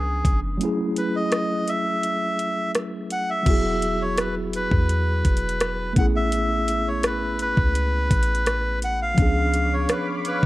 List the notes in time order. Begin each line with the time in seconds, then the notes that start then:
Already playing: C#2 F3 B3 C#4 D4 G#4 G#5
0.25 F#1, kick, closed hi-hat
0.57 F#3 A3 C#4, closed hi-hat
0.63 E4 G#4
0.96 B4, closed hi-hat
1.16 D#5
1.32 cross-stick, closed hi-hat
1.68 E5, closed hi-hat
2.03 closed hi-hat
2.39 closed hi-hat
2.75 cross-stick, closed hi-hat
3.10 F#5, closed hi-hat
3.30 E5
3.43 E1 F#3 B3 F#4, kick, closed hi-hat, crash
3.48 E4 G#4
3.82 closed hi-hat
4.02 C#5
4.17 B4, cross-stick, closed hi-hat
4.53 B4, closed hi-hat
4.71 E2, kick
4.89 closed hi-hat
5.25 E1, kick, closed hi-hat
5.37 closed hi-hat
5.49 closed hi-hat
5.60 cross-stick, closed hi-hat
5.93 A1 A3 B3 C#4, kick, closed hi-hat
5.98 E4 G#4 F#5
6.16 E5
6.32 closed hi-hat
6.68 closed hi-hat
6.88 C#5
7.03 B4, cross-stick, closed hi-hat
7.39 B4, closed hi-hat
7.57 C#2, kick
7.75 closed hi-hat
8.11 A1, kick, closed hi-hat
8.23 closed hi-hat
8.35 closed hi-hat
8.46 cross-stick, closed hi-hat
8.82 F#5, closed hi-hat
9.02 F5
9.14 C#2 F3 B3 C#4 C#5 F5 B5 D6, kick, closed hi-hat
9.20 D4 G#4
9.54 closed hi-hat
9.74 C#5
9.89 B4, cross-stick, closed hi-hat
10.25 B4, closed hi-hat